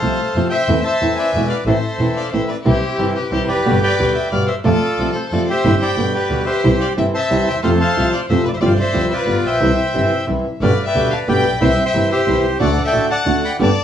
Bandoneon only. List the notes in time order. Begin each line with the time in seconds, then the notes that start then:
Already playing: A4 C5 F5
0.49 C5 E5 G5
0.84 C5 E5 A5
1.16 B4 D5 G#5
1.50 F5
1.67 A4 C5 E5
2.17 F5
2.33 E5
2.50 D5
2.68 E4 G4 C5
3.15 B4
3.31 C5
3.48 G4 B4 D5
3.83 B4 D5 G5
4.15 G5
4.32 F5
4.48 E5
4.65 F4 A4 D5
5.15 C5
5.33 D5
5.50 G4 C5 E5
5.82 D5 G5 B5
6.15 G4 B4 D5
6.46 G4 C5 E5
6.80 F5
6.97 G5
7.14 C5 E5 A5
7.48 G5
7.63 A4 C5 F5
7.80 C5 F5 A5
8.15 F5
8.30 E5
8.48 D5
8.57 E5
8.65 C5 D5 F5
8.80 C5 E5
9.13 F4 B4 D5
9.46 C5 E5 G5
10.62 B4 D5 F5
10.87 B4 D5 G5
11.13 A5
11.29 D5 G5 B5
11.61 C5 E5 G5
11.85 C5 E5 G5
12.12 G4 C5 E5
12.60 A4 D5 F#5
12.87 D5 G5
13.11 D5 F#5 A5
13.45 B5
13.62 D5 A5